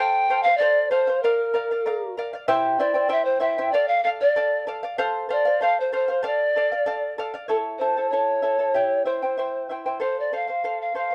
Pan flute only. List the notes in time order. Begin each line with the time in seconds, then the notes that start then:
Already playing: G5
0.43 F5
0.57 D5
0.91 C5
1.23 A#4
2.79 D5
3.11 E5
3.25 C5
3.41 E5
3.72 D5
3.88 F5
4.04 F5
4.21 D5
5.32 D5
5.62 F5
5.80 C5
5.95 C5
6.27 D5
7.50 A4
7.78 C5
8.10 C#5
9.05 C5
10.02 C5
10.20 D5
10.35 F5
10.82 F5
10.98 F5